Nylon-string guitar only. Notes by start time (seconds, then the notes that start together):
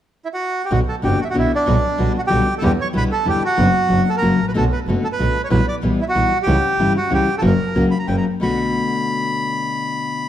0.71 B2 D3 B3 D4 F#4
1.02 B2 D3 B3 D4 F#4
1.34 B2 D3 B3 D4 F#4
1.66 B2 D3 G3 B3 F#4
1.98 B2 D3 G3 B3 F#4
2.29 B2 D3 G3 B3 F#4
2.61 B2 D3 G3 B3 E4
2.93 B2 D3 G3 B3 E4
3.25 B2 D3 G3 B3 E4
3.57 B2 F#3 B3 D4 F#4
3.88 B2 F#3 B3 D4 F#4
4.21 C#3 F#3 A#3 C#4 F#4
4.54 B2 D3 A3 B3 F#4
4.88 B2 D3 A3 B3 F#4
5.19 B2 D3 A3 B3 F#4
5.50 B2 E3 G3 B3 E4
5.82 B2 E3 G3 B3 E4
6.15 B2 E3 G3 B3 E4
6.46 C#3 E3 G3 C#4 E4
6.79 C#3 E3 G3 C#4 E4
7.10 C#3 E3 G3 C#4 E4
7.41 C#3 F#3 A#3 C#4 F#4
7.75 C#3 F#3 A#3 C#4 F#4
8.07 C#3 F#3 A#3 C#4 F#4
8.40 B2 D3 A3 B3 F#4